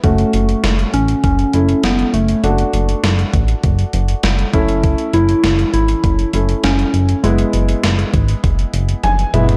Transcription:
<<
  \new Staff \with { instrumentName = "Grand piano" } { \time 4/4 \key fis \minor \tempo 4 = 100 << { r1 | r1 | r1 | r2. gis''8 e''8 | } \\ { <a cis' fis'>2~ <a cis' fis'>8 <a cis' e'>4. | <a d' fis'>2.~ <a d' fis'>8 <a cis' e'>8~ | <a cis' e'>2~ <a cis' e'>8 <a cis' e'>4. | <gis b e'>2.~ <gis b e'>8 <gis b e'>8 | } >> }
  \new Staff \with { instrumentName = "Soft synth lead" } { \time 4/4 \key fis \minor a4. cis'8 cis'4 b8 a8~ | a4 r2. | r8 e'4 e'4 r8 cis'4 | gis2 r2 | }
  \new Staff \with { instrumentName = "Analog synth bass" } { \clef bass \time 4/4 \key fis \minor fis,,8 fis,,8 fis,,8 a,,8 fis,,8 fis,,8 fis,,8 fis,,8 | fis,,8 fis,,8 fis,,8 a,,8 fis,,8 fis,,8 fis,,8 fis,,8~ | fis,,8 fis,,8 fis,,8 gis,,8 fis,,8 fis,,8 fis,,8 fis,,8 | fis,,8 fis,,8 fis,,8 gis,,8 fis,,8 fis,,8 fis,,8 fis,,8 | }
  \new DrumStaff \with { instrumentName = "Drums" } \drummode { \time 4/4 <hh bd>16 hh16 hh16 hh16 <hh sn>16 hh16 hh16 hh16 <hh bd>16 hh16 hh16 hh16 <hh sn>16 hh16 hh16 hh16 | hh16 hh16 hh16 hh16 <hh sn>16 hh16 <hh bd>16 hh16 <hh bd>16 hh16 hh16 hh16 <hh sn>16 hh16 <hh bd>16 hh16 | <hh bd>16 hh16 hh16 hh16 <hh sn>16 hh16 hh16 hh16 <hh bd>16 hh16 hh16 hh16 <hh sn>16 hh16 hh16 hh16 | hh16 hh16 hh16 hh16 <hh sn>16 hh16 <hh bd>16 hh16 <hh bd>16 hh16 hh16 hh16 <hh tommh>16 hh16 <hh toml>16 <hh tomfh>16 | }
>>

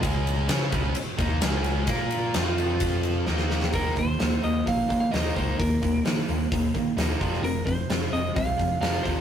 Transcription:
<<
  \new Staff \with { instrumentName = "Lead electric guitar" } { \time 4/4 \key ees \mixolydian \tempo 4 = 130 r1 | r1 | bes'8 c''4 ees''8 f''8. f''16 ees''8 c''8 | bes'4 r2. |
bes'8 c''4 ees''8 f''4 f''8 c''8 | }
  \new Staff \with { instrumentName = "Overdriven electric guitar" } { \clef bass \time 4/4 \key ees \mixolydian <des aes des'>4 <des' aes' des''>8 <des aes des'>8 r8 <ees bes ees'>8 <des aes des'>4 | <bes f' bes'>4 <f c' f'>2 <ees bes ees'>4 | <ees bes ees'>8 <ees bes>8 <ees bes>8 <ees bes>8 <ees bes>8 <ees bes>8 <ees bes ees'>8 <ees bes ees'>8 | <ees bes>8 <ees bes>8 <ees bes>8 <ees bes>8 <ees bes>8 <ees bes>8 <ees bes ees'>8 <f, c f>8 |
<f, c>8 <f, c>8 <f, c>8 <f, c>8 <f, c>8 <f, c>8 <f, c f>8 <f, c f>8 | }
  \new Staff \with { instrumentName = "Picked electric bass" } { \clef bass \time 4/4 \key ees \mixolydian des,4 des8 des,8 r8 ees,8 des,4 | bes,4 f,2 ees,4 | ees,8 ees,8 ees,8 ees,8 bes,,8 ees8 ees,8 des,8 | ees,8 ees,8 ees8 ees,8 ees,8 ees8 ees,8 f,,8 |
f,,8 f,,8 f,,8 f,,8 c,8 f,8 f,,8 ees,8 | }
  \new DrumStaff \with { instrumentName = "Drums" } \drummode { \time 4/4 <bd cymr>8 cymr8 <cymr sn>8 <bd cymr>8 cymr8 <bd cymr>8 <cymr sn>8 cymr8 | <bd cymr>8 cymr8 <cymr sn>8 cymr8 <bd cymr>8 cymr8 sn16 sn16 sn16 sn16 | <hho bd>8 <hho bd>8 <hho sn>8 hho8 <hho bd>8 <hho bd>8 <hho sn>8 <hho bd>8 | <hho bd>8 <hho bd>8 <hho sn>8 hho8 <hho bd>8 <hho bd>8 <hho sn>8 <hho bd>16 sn16 |
hho8 <hho bd>8 <hho sn>8 hho8 <hho bd>8 <hho bd>8 <hho sn>8 <hho bd>8 | }
>>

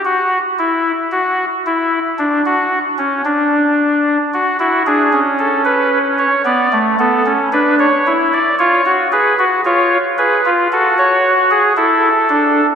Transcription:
\new Staff \with { instrumentName = "Pipe organ" } { \time 4/4 \key fis \phrygian \tempo 4 = 56 << { fis'8 e'8 fis'8 e'8 d'16 fis'8 cis'16 d'4 | r16 fis'16 gis'8 a'16 b'8 cis''16 d''8 a'8 b'16 cis''8 d''16 | cis''8 b'8 cis''8 b'8 a'16 cis''8 gis'16 a'4 | } \\ { r1 | fis'16 e'16 d'16 cis'4~ cis'16 b16 a16 b16 cis'16 d'8 e'8 | eis'16 fis'16 gis'16 fis'16 eis'8 gis'16 eis'16 fis'4 e'8 d'8 | } >> }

